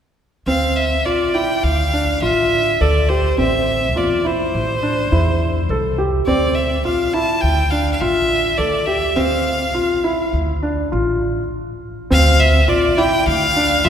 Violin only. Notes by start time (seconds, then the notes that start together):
0.46 F5
0.76 E5
1.05 D5
1.34 G5
1.63 F5
2.22 E5
2.81 D5
3.09 C5
3.39 E5
3.97 D5
4.26 C5
6.26 D5
6.54 E5
6.85 F5
7.13 A5
7.40 G5
7.71 F5
7.92 F5
8.00 E5
8.57 D5
8.86 E5
9.16 F5
12.12 F5
12.39 E5
12.69 D5
12.98 G5
13.27 F5
13.84 E5